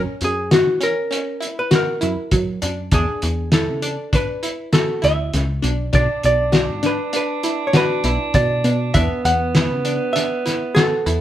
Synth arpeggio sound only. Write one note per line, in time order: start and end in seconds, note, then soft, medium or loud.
0.00 0.37 C#4 medium
0.51 0.74 F#4 medium
0.81 1.04 C#4 medium
1.11 1.34 C#4 medium
1.40 1.64 E4 medium
1.71 1.94 F#4 medium
2.01 2.48 E4 medium
2.62 2.85 D4 medium
2.92 3.39 D4 medium
3.53 3.76 E4 medium
3.82 4.06 D4 medium
4.13 4.36 D4 medium
4.43 4.66 E4 medium
4.73 4.96 F#4 medium
5.02 5.49 E4 medium
5.62 5.86 D4 medium
5.93 6.40 D4 medium
6.52 6.76 F#4 medium
6.83 7.07 D4 medium
7.13 7.37 D4 medium
7.44 7.67 E4 medium
7.74 7.97 F#4 medium
8.05 8.51 E4 medium
8.65 8.88 D4 medium
8.95 9.41 D4 medium
9.55 9.79 E4 medium
9.85 10.08 D4 medium
10.16 10.39 D4 medium
10.46 10.69 E4 medium
10.76 10.99 F#4 medium
11.06 11.21 E4 medium